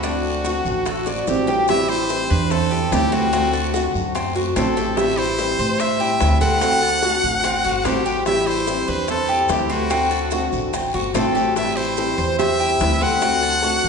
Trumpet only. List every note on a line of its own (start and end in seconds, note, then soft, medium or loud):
0.00 1.28 F#4 medium
1.28 1.66 G4 medium
1.69 1.91 E5 medium
1.89 2.32 C5 loud
2.31 2.53 B4 medium
2.51 2.94 A4 medium
2.93 3.15 G4 medium
3.13 3.95 F#4 medium
4.57 4.99 A4 medium
4.98 5.19 E5 loud
5.18 5.81 C5 loud
5.80 6.41 E5 loud
6.41 7.87 F#5 loud
7.86 8.26 G4 medium
8.26 8.48 E5 loud
8.47 8.90 C5 medium
8.89 9.09 B4 medium
9.10 9.52 A4 medium
9.51 9.71 G4 medium
9.72 10.50 F#4 medium
11.15 11.53 A4 medium
11.56 11.78 E5 medium
11.76 12.38 C5 medium
12.39 13.04 E5 loud
13.03 13.89 F#5 loud